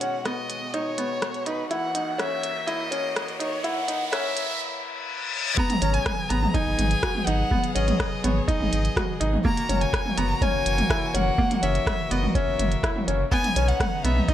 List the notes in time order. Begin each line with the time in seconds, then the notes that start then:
Already playing: B2 G#3 F#4 F#5, riser
0.01 G#1 C#4, closed hi-hat
0.25 B3 D#5, cross-stick, closed hi-hat
0.49 G#1, closed hi-hat
0.74 D#4 C#5, closed hi-hat
0.86 G#1
0.98 G#1 B3, closed hi-hat
1.22 cross-stick, closed hi-hat
1.34 closed hi-hat
1.46 G#1 D#4 B4, closed hi-hat
1.70 E3 A#3 E4 F#5, closed hi-hat
1.95 F#1 D#4, closed hi-hat
2.18 C#4 E5, cross-stick, closed hi-hat
2.43 F#1, closed hi-hat
2.67 E4 D#5, closed hi-hat
2.91 C#4, closed hi-hat
3.16 cross-stick, closed hi-hat
3.28 closed hi-hat
3.39 D#4 C#5, closed hi-hat
3.64 E4 F#5, closed hi-hat
3.88 D#4, closed hi-hat
4.12 C#4 E5, cross-stick, closed hi-hat
4.37 closed hi-hat
4.61 reverse cymbal
5.57 F#3 B3 G#4 A#5, kick
5.70 closed hi-hat, mid tom
5.82 G#1 C#4, closed hi-hat
5.94 G#5, closed hi-hat
6.06 kick, cross-stick, closed hi-hat, mid tom
6.30 G#1 B3 A#5, closed hi-hat
6.43 mid tom
6.54 D#4 G#5, kick, closed hi-hat
6.66 G#1
6.78 G#1, closed hi-hat, mid tom
6.91 closed hi-hat
7.03 F#4, kick, cross-stick, closed hi-hat
7.15 mid tom
7.27 G#1 D#4 F#5, closed hi-hat
7.51 B3, kick, mid tom
7.64 closed hi-hat
7.75 G#1 C#4 D#5, closed hi-hat
7.88 closed hi-hat, mid tom
8.00 kick, cross-stick, closed hi-hat
8.24 G#1 B3 C#5, closed hi-hat, mid tom
8.48 D#4 D#5, kick, closed hi-hat
8.60 G#1, mid tom
8.72 G#1, closed hi-hat
8.85 closed hi-hat
8.96 F#4, kick, cross-stick, closed hi-hat, mid tom
9.20 G#1 D#4, closed hi-hat
9.33 mid tom
9.45 E3 A#3 F#4 A#5, kick
9.57 closed hi-hat
9.69 F#1 C#4, closed hi-hat, mid tom
9.81 G#5, closed hi-hat
9.93 kick, cross-stick, closed hi-hat
10.06 mid tom
10.17 F#1 B3 A#5, closed hi-hat
10.41 C#4 G#5, kick, closed hi-hat, mid tom
10.54 F#1
10.66 F#1, closed hi-hat
10.78 closed hi-hat, mid tom
10.90 E4, kick, cross-stick, closed hi-hat
11.14 F#1 C#4 F#5, closed hi-hat, mid tom
11.38 A#3, kick
11.51 closed hi-hat, mid tom
11.63 F#1 C#4 E5, closed hi-hat
11.75 closed hi-hat
11.87 kick, cross-stick, closed hi-hat, mid tom
12.11 F#1 B3 D#5, closed hi-hat
12.23 mid tom
12.35 C#4 E5, kick, closed hi-hat
12.47 F#1
12.59 F#1, closed hi-hat, mid tom
12.72 closed hi-hat
12.83 E4, kick, cross-stick, closed hi-hat
12.96 mid tom
13.07 F#1 C#4, closed hi-hat
13.32 C#3 B3 D#4 G#5, kick
13.44 closed hi-hat, mid tom
13.56 B1 C#4, closed hi-hat
13.68 F#5, closed hi-hat
13.80 kick, cross-stick, closed hi-hat, mid tom
14.04 B1 B3 E5, closed hi-hat
14.17 mid tom
14.28 D#4 D#5, kick, closed hi-hat